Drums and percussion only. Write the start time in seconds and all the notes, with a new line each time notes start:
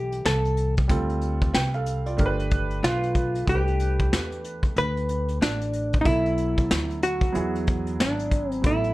0.12 closed hi-hat
0.25 snare
0.45 closed hi-hat
0.57 closed hi-hat
0.77 kick, closed hi-hat
0.89 kick, closed hi-hat
1.09 closed hi-hat
1.21 closed hi-hat
1.42 kick, closed hi-hat
1.54 snare
1.74 closed hi-hat
1.86 closed hi-hat
2.06 closed hi-hat
2.18 kick, closed hi-hat
2.39 closed hi-hat
2.51 kick, closed hi-hat
2.70 closed hi-hat
2.84 snare
3.03 closed hi-hat
3.15 kick, closed hi-hat
3.35 closed hi-hat
3.47 kick, closed hi-hat
3.68 closed hi-hat
3.80 closed hi-hat
4.00 kick, closed hi-hat
4.13 snare
4.32 closed hi-hat
4.44 closed hi-hat
4.63 kick, closed hi-hat
4.76 closed hi-hat
4.97 closed hi-hat
5.09 closed hi-hat
5.28 closed hi-hat
5.42 snare
5.61 closed hi-hat
5.73 closed hi-hat
5.93 kick, closed hi-hat
6.05 kick, closed hi-hat
6.26 closed hi-hat
6.38 closed hi-hat
6.58 kick, closed hi-hat
6.71 snare
6.90 closed hi-hat
7.02 closed hi-hat
7.21 kick, closed hi-hat
7.35 closed hi-hat
7.55 closed hi-hat
7.67 kick, closed hi-hat
7.87 closed hi-hat
8.00 snare
8.19 closed hi-hat
8.31 kick, closed hi-hat
8.52 closed hi-hat
8.64 kick, closed hi-hat
8.84 closed hi-hat